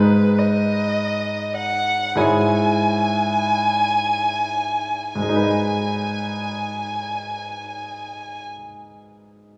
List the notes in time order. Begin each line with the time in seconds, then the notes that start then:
Already playing: G#2 G#3 D#4 B4
0.39 D#5
1.57 F#5
2.15 G#2 G#3 E4 C#5 G#5
5.14 G#2 G#5
5.22 G#3
5.29 D#4
5.36 B4
5.43 D#5